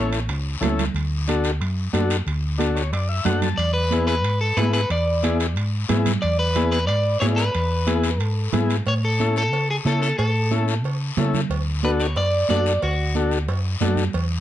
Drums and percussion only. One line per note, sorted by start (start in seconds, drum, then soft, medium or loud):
0.13 high timbale medium
0.13 short guiro medium
0.29 high conga soft
0.29 high timbale medium
0.29 long guiro medium
0.63 high conga medium
0.63 low conga medium
0.63 high timbale medium
0.63 low timbale medium
0.63 short guiro medium
0.79 low conga medium
0.79 high timbale medium
0.79 short guiro medium
0.95 high conga soft
0.95 high timbale medium
0.95 long guiro medium
1.28 high conga medium
1.28 high timbale medium
1.28 short guiro medium
1.44 high timbale medium
1.44 short guiro medium
1.61 high conga soft
1.61 high timbale medium
1.61 long guiro medium
1.93 high conga medium
1.93 high timbale medium
1.93 low timbale medium
1.93 short guiro medium
2.10 high timbale medium
2.10 short guiro medium
2.27 high conga soft
2.27 high timbale medium
2.27 long guiro medium
2.59 high conga medium
2.59 high timbale medium
2.59 short guiro medium
2.77 high timbale medium
2.77 short guiro medium
2.93 high conga soft
2.93 high timbale medium
2.93 long guiro medium
3.25 high conga medium
3.25 low conga medium
3.25 high timbale medium
3.25 low timbale medium
3.25 short guiro medium
3.42 low conga medium
3.42 high timbale medium
3.42 short guiro medium
3.58 high conga soft
3.58 high timbale medium
3.58 long guiro medium
3.91 high conga medium
3.91 high timbale medium
3.91 short guiro medium
4.08 high timbale medium
4.08 short guiro medium
4.24 high conga soft
4.24 high timbale medium
4.24 long guiro medium
4.57 high conga medium
4.57 high timbale medium
4.57 low timbale medium
4.57 short guiro medium
4.73 high timbale medium
4.73 short guiro medium
4.90 high conga soft
4.90 high timbale medium
4.90 long guiro medium
5.23 high conga medium
5.23 high timbale medium
5.23 short guiro medium
5.40 high timbale medium
5.40 short guiro medium
5.56 high conga soft
5.56 high timbale medium
5.56 long guiro medium
5.89 high conga medium
5.89 low conga medium
5.89 high timbale medium
5.89 low timbale medium
5.89 short guiro medium
6.06 low conga medium
6.06 high timbale medium
6.06 short guiro medium
6.23 high conga soft
6.23 high timbale medium
6.23 long guiro medium
6.56 high conga medium
6.56 high timbale medium
6.56 short guiro medium
6.72 high timbale medium
6.72 short guiro medium
6.89 high conga soft
6.89 high timbale medium
6.89 long guiro medium
7.21 high conga medium
7.21 high timbale medium
7.21 low timbale medium
7.21 short guiro medium
7.38 high timbale medium
7.38 short guiro medium
7.55 high conga soft
7.55 high timbale medium
7.55 long guiro medium
7.87 high conga medium
7.87 high timbale medium
7.87 short guiro medium
8.04 high timbale medium
8.04 short guiro medium
8.20 high conga soft
8.20 high timbale medium
8.20 long guiro medium
8.53 high conga medium
8.53 low conga medium
8.53 high timbale medium
8.53 short guiro medium
8.70 high timbale medium
8.70 short guiro medium
8.86 cowbell medium
8.86 high conga soft
8.86 long guiro medium
9.20 high conga medium
9.20 short guiro medium
9.36 short guiro medium
9.53 cowbell medium
9.53 high conga soft
9.53 long guiro medium
9.86 high conga medium
9.86 short guiro medium
10.03 short guiro medium
10.18 cowbell loud
10.18 high conga soft
10.18 long guiro medium
10.51 high conga medium
10.51 short guiro medium
10.68 short guiro medium
10.84 cowbell medium
10.84 high conga soft
10.84 long guiro medium
11.17 high conga medium
11.17 low conga medium
11.17 low timbale medium
11.17 short guiro medium
11.34 low conga medium
11.34 short guiro medium
11.50 cowbell loud
11.50 high conga soft
11.50 long guiro medium
11.83 high conga medium
11.83 short guiro medium
12.00 short guiro medium
12.16 cowbell medium
12.16 high conga soft
12.16 long guiro medium
12.49 high conga medium
12.49 low timbale medium
12.49 short guiro medium
12.66 short guiro medium
12.82 cowbell medium
12.82 high conga soft
12.82 long guiro medium
13.15 high conga medium
13.15 short guiro medium
13.31 short guiro medium
13.48 cowbell medium
13.48 high conga soft
13.48 long guiro medium
13.81 high conga medium
13.81 low conga medium
13.81 low timbale medium
13.81 short guiro medium
13.97 low conga medium
13.97 short guiro medium
14.13 cowbell medium
14.13 high conga soft
14.13 long guiro medium